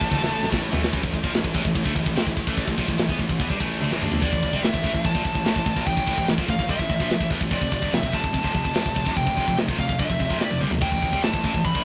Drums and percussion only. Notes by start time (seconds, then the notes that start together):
0.01 kick
0.11 kick, high tom
0.24 snare
0.43 mid tom
0.52 kick, snare
0.73 floor tom
0.84 snare
0.93 kick, ride
1.03 kick
1.14 kick, ride
1.24 kick
1.34 snare, ride
1.44 kick
1.55 kick, ride
1.65 kick
1.75 kick, ride
1.86 kick
1.96 kick, ride
2.06 kick
2.17 snare, ride
2.27 kick
2.37 kick, ride
2.47 kick
2.57 kick, ride
2.68 kick
2.78 kick, ride
2.88 kick
2.99 snare, ride
3.09 kick
3.19 kick, ride
3.29 kick
3.40 kick, ride
3.50 kick
3.60 kick, ride
3.81 high tom
3.92 snare
4.02 mid tom
4.12 floor tom
4.22 kick, crash
4.33 kick
4.43 kick
4.53 kick
4.64 snare, crash
4.74 kick
4.84 kick
4.94 kick
5.05 kick, crash
5.15 kick
5.25 kick
5.35 kick
5.45 snare, crash
5.56 kick
5.66 kick
5.76 kick
5.87 kick, crash
5.97 kick
6.07 kick
6.18 kick
6.27 snare, crash
6.38 kick
6.48 kick
6.59 kick
6.69 kick, crash
6.79 kick
6.90 kick
7.00 kick
7.10 snare, crash
7.20 kick
7.31 kick
7.41 kick
7.51 kick, crash
7.61 kick
7.72 kick
7.82 kick
7.93 snare, crash
8.03 kick
8.13 kick
8.24 kick
8.34 kick, crash
8.44 kick
8.55 kick
8.65 kick
8.75 snare, crash
8.86 kick
8.96 kick
9.06 kick
9.17 kick, crash
9.27 kick
9.37 kick
9.48 kick
9.58 snare, crash
9.68 kick
9.79 kick
9.89 kick
9.99 kick, crash
10.10 kick
10.20 kick
10.30 kick
10.40 snare, crash
10.61 high tom
10.71 floor tom
10.81 kick, crash
10.92 kick
11.02 kick
11.13 kick
11.23 snare, crash
11.34 kick
11.44 kick
11.54 kick
11.65 kick, crash
11.75 kick